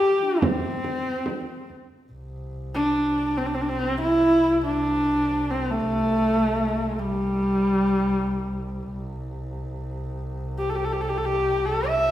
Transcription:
Already playing: xiao G4, horsehead fiddle G4
0.01 frame drum
0.23 xiao D4
0.41 xiao C4, horsehead fiddle C4, frame drum
0.84 frame drum
1.26 frame drum
1.70 frame drum
2.12 double bass C2
2.75 horsehead fiddle D4
3.38 horsehead fiddle C4
3.47 horsehead fiddle D4
3.55 horsehead fiddle C4
3.62 horsehead fiddle D4
3.69 horsehead fiddle C4
4.01 horsehead fiddle E4
4.66 horsehead fiddle D4
5.51 horsehead fiddle C4
5.71 horsehead fiddle A3
6.99 horsehead fiddle G3
8.90 double bass C2
10.58 horsehead fiddle G4
10.70 horsehead fiddle A4
10.75 horsehead fiddle G4
10.85 horsehead fiddle A4
10.93 horsehead fiddle G4
11.01 horsehead fiddle A4
11.09 horsehead fiddle G4
11.18 horsehead fiddle A4
11.25 horsehead fiddle G4
11.66 horsehead fiddle A4
11.87 horsehead fiddle E5

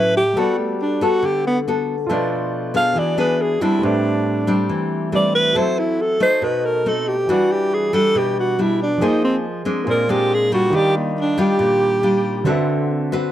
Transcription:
Already playing: nylon-string guitar A2 F#3 C#4 E4, grand piano D3 E4 F#4 A4 C#5, alto saxophone B4
0.17 alto saxophone G4
0.33 grand piano G3 F#4 A4, nylon-string guitar G3 B3 F#4
0.37 alto saxophone F#4, nylon-string guitar A4, grand piano B4 D5
0.59 alto saxophone A3
0.82 alto saxophone D4
1.01 nylon-string guitar B3 F#4 A4, alto saxophone F#4
1.23 nylon-string guitar D3, alto saxophone G4
1.47 alto saxophone B3
1.68 nylon-string guitar B3 F#4 A4
2.07 nylon-string guitar B2 F3 A3, grand piano F4 A4
2.11 nylon-string guitar D4, grand piano B4 D5
2.74 nylon-string guitar B3 D4 G#4, alto saxophone F5
2.93 grand piano E3 F#4 G#4 B4, nylon-string guitar E3
2.99 grand piano D5, alto saxophone D5
3.18 nylon-string guitar B3 D4 G#4, alto saxophone B4
3.42 alto saxophone G#4
3.61 nylon-string guitar G3 C4 D4, alto saxophone E4
3.79 grand piano A3 G4 B4 C5
3.83 nylon-string guitar A2, alto saxophone D4, grand piano D5 E5
4.47 nylon-string guitar G3 C4 D4
4.69 nylon-string guitar E3
5.12 nylon-string guitar G3 C4 D4, grand piano A3 G4 B4 C5 D5 E5, alto saxophone D5
5.35 alto saxophone B4
5.53 nylon-string guitar F#3 C4 E4 A4, grand piano F#4 A4
5.57 grand piano C5 E5, alto saxophone C5
5.79 alto saxophone E4
6.01 alto saxophone A4
6.20 nylon-string guitar A3 D#4, alto saxophone C5
6.41 nylon-string guitar B2, grand piano F#4 A4 C5, alto saxophone B4
6.45 grand piano D#5
6.65 alto saxophone A#4
6.86 nylon-string guitar A3 C4 D#4, alto saxophone A4
7.08 alto saxophone G4
7.26 grand piano E3 F#4, nylon-string guitar E3 G3 D4 F#4
7.31 alto saxophone F#4, grand piano B4 D5
7.52 alto saxophone G4
7.74 alto saxophone G#4
7.93 nylon-string guitar G3 D4 F#4, alto saxophone A4
8.15 nylon-string guitar B2, alto saxophone G4
8.39 alto saxophone F#4
8.59 nylon-string guitar G3 D4 F#4, alto saxophone E4
8.82 alto saxophone D4
8.98 grand piano F3 G#4 A#4, nylon-string guitar F3
9.02 nylon-string guitar A#3 D#4 G#4, alto saxophone D#4, grand piano C5 D#5
9.24 alto saxophone C4
9.65 nylon-string guitar G#3 C4 D4
9.83 nylon-string guitar A#2, grand piano A#3 F4 G#4
9.88 alto saxophone A#4, grand piano C5 D5
10.09 nylon-string guitar G#3 C4 D4, alto saxophone G4
10.34 alto saxophone G#4
10.52 nylon-string guitar G3 D4 F4, alto saxophone F#4
10.70 grand piano D#3 F4 G4, nylon-string guitar D#3
10.75 alto saxophone G4, grand piano A#4 D5
10.97 alto saxophone A#3
11.20 alto saxophone D4
11.38 nylon-string guitar G3 D4 F4, alto saxophone G4
11.59 nylon-string guitar A#2
12.03 nylon-string guitar G3 D4 F4
12.44 grand piano D3 C4 F#4, nylon-string guitar D3 C4 F#4 B4
12.48 grand piano A4 B4 E5
13.12 nylon-string guitar C4 F#4 B4

